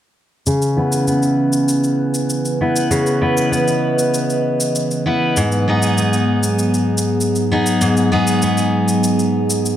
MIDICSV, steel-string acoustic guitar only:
0, 0, Header, 1, 2, 480
1, 0, Start_track
1, 0, Key_signature, 4, "minor"
1, 0, Tempo, 612245
1, 368, Time_signature, 4, 2, 24, 8
1, 7657, End_track
2, 0, Start_track
2, 0, Title_t, "Steel-string acoustic guitar"
2, 0, Program_c, 0, 25
2, 365, Note_on_c, 0, 49, 73
2, 600, Note_on_c, 0, 59, 56
2, 605, Note_on_c, 0, 64, 53
2, 611, Note_on_c, 0, 71, 65
2, 838, Note_off_c, 0, 59, 0
2, 841, Note_on_c, 0, 59, 54
2, 2041, Note_off_c, 0, 64, 0
2, 2042, Note_off_c, 0, 59, 0
2, 2045, Note_on_c, 0, 59, 52
2, 2050, Note_on_c, 0, 64, 50
2, 2051, Note_off_c, 0, 71, 0
2, 2054, Note_on_c, 0, 71, 56
2, 2270, Note_off_c, 0, 49, 0
2, 2279, Note_on_c, 0, 49, 71
2, 2514, Note_off_c, 0, 64, 0
2, 2516, Note_off_c, 0, 59, 0
2, 2520, Note_on_c, 0, 59, 58
2, 2523, Note_on_c, 0, 64, 57
2, 2526, Note_off_c, 0, 71, 0
2, 2529, Note_on_c, 0, 71, 64
2, 2754, Note_off_c, 0, 59, 0
2, 2757, Note_on_c, 0, 59, 53
2, 3961, Note_off_c, 0, 64, 0
2, 3962, Note_off_c, 0, 59, 0
2, 3965, Note_on_c, 0, 59, 53
2, 3970, Note_on_c, 0, 64, 52
2, 3971, Note_off_c, 0, 71, 0
2, 3975, Note_on_c, 0, 71, 56
2, 4203, Note_off_c, 0, 49, 0
2, 4209, Note_on_c, 0, 44, 76
2, 4257, Note_off_c, 0, 64, 0
2, 4448, Note_off_c, 0, 59, 0
2, 4451, Note_on_c, 0, 59, 64
2, 4457, Note_on_c, 0, 63, 58
2, 4460, Note_off_c, 0, 71, 0
2, 4463, Note_on_c, 0, 68, 66
2, 4686, Note_off_c, 0, 59, 0
2, 4689, Note_on_c, 0, 59, 54
2, 5886, Note_off_c, 0, 63, 0
2, 5889, Note_off_c, 0, 59, 0
2, 5892, Note_on_c, 0, 59, 54
2, 5898, Note_off_c, 0, 68, 0
2, 5898, Note_on_c, 0, 63, 50
2, 5901, Note_on_c, 0, 68, 61
2, 6115, Note_off_c, 0, 44, 0
2, 6124, Note_on_c, 0, 44, 84
2, 6358, Note_off_c, 0, 63, 0
2, 6361, Note_off_c, 0, 59, 0
2, 6364, Note_on_c, 0, 59, 62
2, 6370, Note_off_c, 0, 68, 0
2, 6371, Note_on_c, 0, 63, 55
2, 6373, Note_on_c, 0, 68, 67
2, 6605, Note_off_c, 0, 59, 0
2, 6608, Note_on_c, 0, 59, 58
2, 7657, Note_off_c, 0, 44, 0
2, 7657, Note_off_c, 0, 59, 0
2, 7657, Note_off_c, 0, 63, 0
2, 7657, Note_off_c, 0, 68, 0
2, 7657, End_track
0, 0, End_of_file